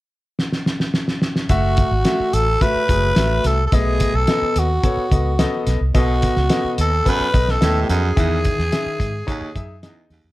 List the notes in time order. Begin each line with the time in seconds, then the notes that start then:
0.39 snare
0.52 snare
0.66 snare
0.80 snare
0.94 snare
1.08 snare
1.22 snare
1.36 snare
1.49 F#1 A3 F#4 E5, kick, closed hi-hat
1.77 kick, closed hi-hat
1.91 G#1
2.05 A3 F#4 E5, snare, closed hi-hat
2.20 muted fingered electric bass stroke
2.33 A1 A4, closed hi-hat
2.61 A3 F#4 B4 E5, kick, closed hi-hat
2.75 muted fingered electric bass stroke
2.89 F#1 A3 F#4 G#4, kick, closed hi-hat
3.16 A1 A3 F#4 E5, snare, closed hi-hat
3.44 C2 A4, snare, closed hi-hat
3.67 A4
3.72 B1 B2 A3 B3 G#4 D#5, kick, closed hi-hat
4.00 kick, closed hi-hat
4.14 B1 A4
4.27 B3 A4 D#5, snare, closed hi-hat
4.42 muted fingered electric bass stroke
4.56 D#2 F#4, closed hi-hat
4.83 B3 A4 C#5, kick, closed hi-hat
4.97 muted fingered electric bass stroke
5.11 C#2 B3 A4 D#5, kick, closed hi-hat
5.39 B3 A4 D#5, snare, closed hi-hat
5.67 B1, snare, closed hi-hat
5.81 C2
5.94 B1 B2 B3 F#4 A4 D#5, kick, closed hi-hat
6.22 kick, closed hi-hat
6.36 C#2, snare
6.50 B3 A4 D#5, snare, closed hi-hat
6.64 muted fingered electric bass stroke
6.78 D#2 A4, closed hi-hat
7.05 F#2 B3 A4 B4, kick, closed hi-hat
7.20 muted fingered electric bass stroke
7.33 B1 B3 A4 D#5, kick, closed hi-hat
7.48 A4, snare
7.61 D#2 A2 B3 A4 D#5, snare, closed hi-hat
7.83 G4
7.89 F2 F#2 G#4, closed hi-hat
8.16 E2 D#3 E3 G#4 E5, kick, closed hi-hat
8.45 kick, closed hi-hat
8.59 E2, snare
8.72 D#3 G#4 E5, snare, closed hi-hat
8.86 muted fingered electric bass stroke
9.00 G#2, kick, closed hi-hat
9.27 D#2 D#4 G#4 C#5, kick, closed hi-hat
9.41 muted fingered electric bass stroke
9.55 F#2 D#4 G#4 E5, kick, closed hi-hat
9.83 E2 D#4 G#4 D#5, snare, closed hi-hat
10.10 D#2 E2, snare, open hi-hat
10.24 F2